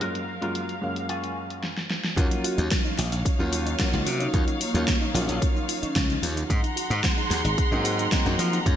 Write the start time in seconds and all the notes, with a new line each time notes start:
Already playing: A#4
0.00 F#2 F#3 G#3 A#3 C#4 F4 F#4 A#4 F5, closed hi-hat
0.15 closed hi-hat
0.41 F#2 G#3 A#3 C#4 F4 F#4 A#4, closed hi-hat
0.55 closed hi-hat
0.69 closed hi-hat
0.81 F#2 G#3 A#3 C#4 F5
0.96 closed hi-hat
1.09 F4 F#4 G#4, closed hi-hat
1.24 closed hi-hat
1.50 closed hi-hat
1.64 snare
1.78 snare
1.91 snare
2.04 snare
2.16 D#2 F#3 A#3 C#4 D#4 F4 C#5 F5, kick, closed hi-hat, shaker
2.31 D#4, closed hi-hat, shaker
2.44 F4 F#4, open hi-hat, shaker
2.58 D#2 D#4, closed hi-hat, shaker
2.71 C#4, kick, snare, closed hi-hat, shaker
2.85 D#4, shaker
2.98 A#1 F4, snare, open hi-hat, shaker
3.12 A#1 D#4, closed hi-hat, shaker
3.25 C#4, kick, closed hi-hat, shaker
3.39 D#2 F#3 A#3 C#4 D#4 F4, shaker
3.52 F4, open hi-hat, shaker
3.66 D#4, closed hi-hat, shaker
3.79 F#3 A#3 C#4 F4, kick, snare, closed hi-hat, shaker
3.93 C#2 F#3 A#3 C#4 D#4 F4, closed hi-hat, shaker
4.06 C3 F4 F#4, open hi-hat, shaker
4.20 D#4, closed hi-hat, shaker
4.33 D#2 F#3 A#3 C#4 F4, kick, closed hi-hat, shaker
4.47 D#4, closed hi-hat, shaker
4.60 A#3 F4, open hi-hat, shaker
4.74 D#2 F#3 A#3 C#4 D#4 F4, closed hi-hat, shaker
4.87 C#4, kick, snare, closed hi-hat, shaker
5.01 D#4, shaker
5.14 A#1 F#3 A#3 C#4 F4, open hi-hat, shaker
5.28 A#1 D#4, closed hi-hat, shaker
5.41 C#4, kick, closed hi-hat, shaker
5.55 D#4, shaker
5.68 F4, open hi-hat, shaker
5.82 C#4 D#4, muted slap bass stroke, closed hi-hat, shaker
5.95 C#2 C#4, kick, snare, closed hi-hat, shaker
6.09 D#4, closed hi-hat, shaker
6.22 D#2 F4, open hi-hat, shaker
6.36 D#4, closed hi-hat, shaker
6.49 G#2 C4 G#4 F#5 A#5 C6, kick, closed hi-hat, shaker
6.63 D#4, closed hi-hat, shaker
6.76 F#4, open hi-hat, shaker
6.90 G#2 D#4, closed hi-hat, shaker
7.03 C4, kick, snare, closed hi-hat, shaker
7.17 D#4, shaker
7.30 D#2 F#4, snare, open hi-hat, shaker
7.44 G#1 D#4, closed hi-hat, shaker
7.58 C4, kick, closed hi-hat, shaker
7.71 G#2 F#3 A#3 C4 D#4, shaker
7.85 F#4, open hi-hat, shaker
7.98 D#4, closed hi-hat, shaker
8.12 F#3 A#3 C4 D#4, kick, snare, closed hi-hat, shaker
8.25 F#2 F#3 A#3 C4 D#4, closed hi-hat, shaker
8.39 F3 F#4, open hi-hat, shaker
8.53 D#4, closed hi-hat, shaker
8.66 F#2 F#3 G#3 A#3 C#4 F4 F5, kick, closed hi-hat, shaker